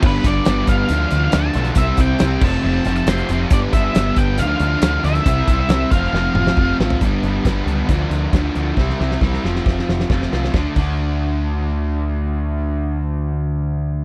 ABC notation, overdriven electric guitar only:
X:1
M:4/4
L:1/8
Q:1/4=137
K:Ddor
V:1 name="Overdriven electric guitar"
[G,,D,G,B,D] [G,B,D] [D,G,B,D]2 [D,F,A,D] [F,A,D] [D,F,A,D] [F,A,D] | [C,G,CE] [G,CE] [C,G,CE] [F,,C,F,A,C] [F,,C,F,A,C] [F,A,C] [C,F,A,C] [F,A,C] | [G,,D,G,B,D] [G,B,D] [D,G,B,D]2 [D,F,A,D] [F,A,D] [D,F,A,D] [F,A,D] | [C,G,CE] [G,CE] [C,G,CE] [F,A,CF] [F,A,CF] [A,CF] [F,A,CF] [A,CF] |
[G,,D,G,B,D] [G,B,D] [G,,D,G,B,D] [G,B,D] [D,F,A,D]2 [D,F,A,D] [F,A,D] | [C,G,CE] [G,CE] [C,G,CE] [F,A,CF]3 [F,A,CF] [A,CF] | [D,A,D] [D,A,D]6- [D,A,D]- | [D,A,D]8 |]